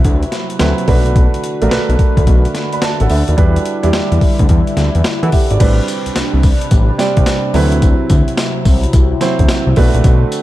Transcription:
Already playing: analog synth pad C3 F#3 E4 B4, grand piano F#3 C4 E4 B4
0.04 analog synth bass D2, kick, closed hi-hat
0.23 closed hi-hat
0.32 snare, closed hi-hat
0.50 closed hi-hat
0.59 analog synth bass D2, grand piano F#3 C4 E4 B4, snare, closed hi-hat
0.78 closed hi-hat
0.88 analog synth bass B1, analog synth pad D3 A3 F#4, grand piano A3 D4 F#4 B4, kick, open hi-hat
1.06 closed hi-hat
1.16 kick, closed hi-hat
1.34 closed hi-hat
1.44 closed hi-hat
1.62 analog synth bass A1, grand piano A3 D4 F#4 A#4, closed hi-hat
1.69 analog synth bass B1, grand piano B4, snare, closed hi-hat
1.89 analog synth bass B1, closed hi-hat
1.99 kick, closed hi-hat
2.17 analog synth bass D2, kick, closed hi-hat
2.27 analog synth bass B1, kick, closed hi-hat
2.45 closed hi-hat
2.55 snare, closed hi-hat
2.73 grand piano D5 B5, closed hi-hat
2.82 grand piano A5, snare, closed hi-hat
3.00 analog synth bass A1, grand piano A4 F#5, closed hi-hat
3.10 analog synth bass D2, grand piano E5, open hi-hat
3.28 analog synth bass D#2, grand piano F#4 D5, closed hi-hat
3.37 analog synth bass E2, grand piano G3 D4 E4 B4, analog synth pad G3 E4, kick, closed hi-hat
3.56 closed hi-hat
3.65 closed hi-hat
3.83 analog synth bass E2, grand piano G3 D4 E4 G4, closed hi-hat
3.93 snare, closed hi-hat
4.12 analog synth bass E2, closed hi-hat
4.21 kick, open hi-hat
4.39 analog synth bass D2, kick, closed hi-hat
4.49 analog synth bass E2, kick, closed hi-hat
4.67 closed hi-hat
4.77 analog synth bass D2, snare, closed hi-hat
4.95 analog synth bass E2, closed hi-hat
5.04 snare, closed hi-hat
5.23 analog synth bass E3, grand piano A4 F#5, closed hi-hat
5.32 grand piano G4 E5, kick, open hi-hat
5.50 analog synth bass G#1, grand piano F#4 D5, closed hi-hat
5.60 analog synth bass A1, analog synth pad C3 G3 D4 B4, grand piano G3 C4 D4 B4, kick, closed hi-hat, crash, tambourine
5.88 closed hi-hat, tambourine
6.06 analog synth bass C2, closed hi-hat
6.16 analog synth bass C2, snare, closed hi-hat, tambourine
6.34 analog synth bass C2
6.43 kick, open hi-hat, tambourine
6.61 closed hi-hat
6.71 analog synth bass A1, kick, closed hi-hat, tambourine
6.98 grand piano G3 C4 D4 D5, snare, closed hi-hat, tambourine
7.17 analog synth bass C2, kick, closed hi-hat
7.26 snare, closed hi-hat, tambourine
7.54 analog synth bass D2, grand piano F#3 C4 E4 B4, analog synth pad F#3 C4 E4, open hi-hat
7.72 closed hi-hat
7.82 kick, closed hi-hat, tambourine
8.10 analog synth bass D2, kick, closed hi-hat, tambourine
8.28 closed hi-hat
8.37 snare, closed hi-hat, tambourine
8.65 analog synth bass C2, kick, open hi-hat, tambourine
8.83 closed hi-hat
8.93 analog synth bass C2, kick, closed hi-hat, tambourine
9.21 grand piano F#3 C4 E4 C5, snare, closed hi-hat, tambourine
9.39 analog synth bass D2, kick, closed hi-hat
9.49 snare, closed hi-hat, tambourine
9.67 analog synth bass C2
9.76 analog synth bass B1, analog synth pad D3 A3 F#4, grand piano A3 D4 F#4 B4, kick, open hi-hat
9.94 analog synth bass A#1, closed hi-hat
10.04 analog synth bass B1, kick, closed hi-hat, tambourine
10.32 closed hi-hat, tambourine

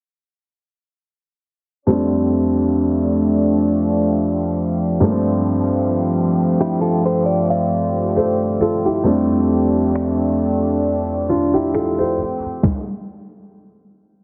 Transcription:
1.87 felt piano F2 G3 A3 C4, string section F3 A3 D4 G4
1.91 felt piano D4
5.00 felt piano G2 F3 A3 A#3, string section A3 C4
5.04 felt piano D4
5.10 felt piano C4
6.61 clean electric guitar E4 G4
6.81 clean electric guitar F4 A4
7.06 clean electric guitar A4 C5
7.26 clean electric guitar D5
7.50 clean electric guitar D5 F5
8.16 felt piano A4 C5
8.61 felt piano F4 A4
8.85 felt piano E4 G4
9.04 felt piano F2 G3 A3 C4, string section A3 D4
9.08 felt piano D4
9.96 finger snap
11.29 felt piano D4 F4
11.54 felt piano E4 G4
11.74 felt piano F4 A4, finger snap
11.98 felt piano A4 C5
12.19 string section C4 G4
12.63 kick, snare

